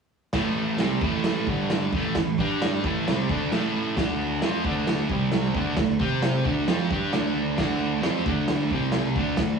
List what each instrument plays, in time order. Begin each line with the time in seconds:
0.33 picked electric bass A1, distorted electric guitar A2 E3 A3, kick, snare, crash
0.78 picked electric bass C2, distorted electric guitar C3 G3 C4, snare, crash
1.01 picked electric bass A1, distorted electric guitar A2 E3 A3, kick
1.24 snare, crash
1.47 picked electric bass G1, distorted electric guitar G2 D3 G3, kick
1.70 snare, crash
1.92 picked electric bass A1, distorted electric guitar A2 E3 A3, kick
2.15 picked electric bass A1, distorted electric guitar A2 E3, kick, snare, crash
2.38 picked electric bass G2, distorted electric guitar G3 D4 G4, kick
2.62 snare, crash
2.84 picked electric bass A1, distorted electric guitar A2 E3 A3, kick
3.07 picked electric bass C2, distorted electric guitar C3 G3 C4, snare, crash
3.29 picked electric bass D2, distorted electric guitar D3 A3 D4, kick
3.52 picked electric bass A1, distorted electric guitar A2 E3 A3, snare, crash
3.97 picked electric bass D2, distorted electric guitar D3 A3 D4, kick, snare, crash
4.42 picked electric bass F2, distorted electric guitar F3 C4 F4, snare, crash
4.65 picked electric bass D2, distorted electric guitar D3 A3 D4, kick
4.87 snare, crash
5.09 picked electric bass C2, distorted electric guitar C3 G3 C4, kick
5.32 snare, crash
5.54 picked electric bass D2, distorted electric guitar D3 A3 D4, kick
5.77 picked electric bass D2, distorted electric guitar D3 A3, kick, snare, crash
5.99 picked electric bass C3, distorted electric guitar C4 G4 C5, kick
6.22 snare, crash
6.45 picked electric bass D2, distorted electric guitar D3 A3 D4, kick
6.67 picked electric bass F2, distorted electric guitar F3 C4 F4, snare, crash
6.91 picked electric bass G2, distorted electric guitar G3 D4 G4, kick
7.12 picked electric bass D2, distorted electric guitar D3 A3 D4, snare, crash
7.58 picked electric bass D2, distorted electric guitar D3 A3 D4, kick, snare, crash
8.02 picked electric bass F2, distorted electric guitar F3 C4 F4, snare, crash
8.25 picked electric bass D2, distorted electric guitar D3 A3 D4, kick
8.48 snare, crash
8.71 picked electric bass C2, distorted electric guitar C3 G3 C4, kick
8.92 snare, crash
9.16 picked electric bass D2, distorted electric guitar D3 A3 D4, kick
9.37 picked electric bass D2, distorted electric guitar D3 A3, kick, snare, crash